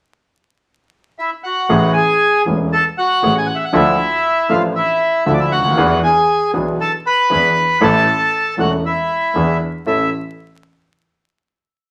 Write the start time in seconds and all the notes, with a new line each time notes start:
1.19 E4 E5
1.44 F#4 F#5
1.69 A1 A2 E3 A3 C#4 G#4
1.93 G#4 G#5
2.46 E1 E2 E3 A3 C#4 G#4
2.73 A4 A5
2.98 F#4 F#5
3.22 A1 A2 E3 A3 C#4 G#4
3.38 G#5
3.46 F#5
3.55 E5
3.65 F#5
3.73 D2 D3 F3 D4 E4 A4 E5
4.49 A1 A2 F3 D4 E4 F4 A4 F5
4.76 E4 E5
5.26 D2 D3 F3 D4 E4 A4 E5
5.34 D5
5.39 E4 E5
5.51 D2 F#4 F#5
5.58 C#2
5.64 D2
5.71 D#2
5.77 E2 E3 B3 D4 G#4
6.03 G#4 G#5
6.54 B1 B2 E3 B3 D4 G#4
6.81 A4 A5
7.06 B4 B5
7.30 E2 E3 B3 D4 G#4
7.81 A1 A2 E3 A3 C#4 A4 A5
8.57 E1 E2 E3 A3 C#4 F#4 A4 F#5
8.86 E4 E5
9.34 E2 E3 B3 D4 G#4
9.86 A1 C#4 E4 A4 E5